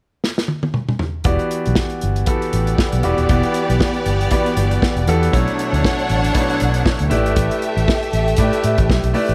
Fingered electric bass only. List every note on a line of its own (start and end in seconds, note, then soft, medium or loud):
1.25 1.36 E1 loud
1.67 1.75 B1 medium
2.03 2.23 G1 medium
2.54 2.73 A1 medium
2.93 3.02 B1 medium
3.04 3.15 E1 medium
3.19 3.27 D#1 medium
3.30 3.41 E1 medium
3.70 3.78 B1 medium
4.06 4.26 G1 medium
4.57 4.77 G1 medium
4.96 5.05 E1 medium
5.07 5.28 E2 medium
5.33 5.45 B1 medium
5.73 5.82 D2 medium
6.10 6.30 A1 medium
6.62 6.81 B1 medium
7.00 7.09 D2 medium
7.11 7.26 A1 medium
7.26 7.35 G#1 medium
7.37 7.48 A1 medium
7.77 7.86 A1 medium
8.13 8.34 A1 loud
8.38 8.50 A2 loud
8.64 8.76 A2 loud
8.79 8.90 A1 medium
8.90 9.01 B1 medium
9.04 9.13 B1 medium
9.29 9.35 A1 medium